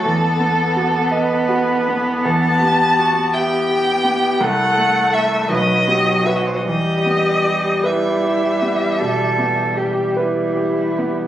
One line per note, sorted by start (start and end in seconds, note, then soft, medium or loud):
0.00 2.26 A4 loud
0.04 2.22 E2 medium
0.04 4.42 B3 medium
0.04 1.12 A4 medium
0.40 0.97 B3 medium
0.76 1.34 F#4 medium
1.10 2.26 B4 medium
1.10 1.71 D#5 medium
1.49 2.11 F#4 medium
1.88 2.26 B3 medium
2.25 4.37 E2 medium
2.25 2.62 A4 medium
2.25 3.35 A5 loud
2.62 3.19 B3 medium
2.62 3.01 G4 medium
2.99 3.34 F#4 medium
2.99 3.55 G4 medium
3.33 4.43 G4 medium
3.33 3.90 E5 medium
3.33 4.43 G5 loud
3.69 4.27 G4 medium
4.04 4.41 B3 medium
4.40 5.48 C2 medium
4.40 5.51 A3 medium
4.40 5.50 A4 loud
4.40 5.15 F#5 loud
4.76 5.36 A3 medium
5.13 5.47 A4 medium
5.13 5.50 E5 loud
5.13 5.48 E5 medium
5.50 6.62 B1 medium
5.50 6.64 F#3 medium
5.50 5.89 B4 medium
5.50 6.27 D#5 loud
5.87 6.50 B3 medium
5.87 6.29 G4 medium
6.26 6.62 F#4 medium
6.26 6.68 F#4 medium
6.26 6.62 B4 medium
6.26 6.37 E5 medium
6.36 6.48 D#5 medium
6.47 6.58 C5 medium
6.57 6.65 D#5 medium
6.65 8.96 E2 medium
6.65 11.12 G3 medium
6.65 7.77 G4 medium
6.65 7.87 D#5 loud
7.06 7.69 B3 soft
7.45 8.08 G4 medium
7.84 8.97 E4 medium
7.84 8.46 B4 medium
7.84 10.17 E5 medium
8.23 8.85 G4 soft
8.62 9.24 B3 medium
9.00 9.62 B2 soft
9.00 9.79 A4 medium
9.39 10.01 B3 soft
9.77 10.18 G4 medium
9.77 10.42 G4 medium
10.17 11.27 E4 medium
10.17 10.82 B4 soft
10.57 11.22 G4 medium
10.99 11.27 B3 medium